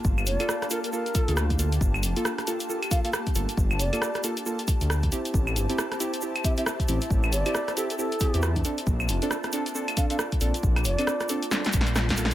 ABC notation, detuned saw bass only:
X:1
M:4/4
L:1/16
Q:"Swing 16ths" 1/4=136
K:Gdor
V:1 name="Detuned saw bass" clef=bass
G,,,2 F,,, z8 D,,4- D,, | G,,,2 F,,, z8 z3 G,,, z | G,,,2 F,,, z8 D,,3 z2 | A,,,2 G,,, z8 z3 A,,, z |
A,,,2 G,,, z8 E,,3 z2 | B,,,2 F,,, z8 z3 B,,, z | B,,,2 F,,, z6 z B,,,4 B,,, F,, |]